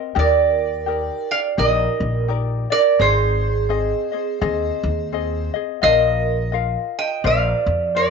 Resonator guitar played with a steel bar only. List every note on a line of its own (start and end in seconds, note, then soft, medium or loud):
0.19 1.34 D5 medium
1.31 1.39 F5 medium
1.59 2.25 D#5 medium
2.72 3.00 D5 loud
3.01 5.51 C5 loud
5.84 6.50 D#5 loud
6.99 7.26 G5 medium
7.27 7.98 F5 medium
7.96 8.10 D5 medium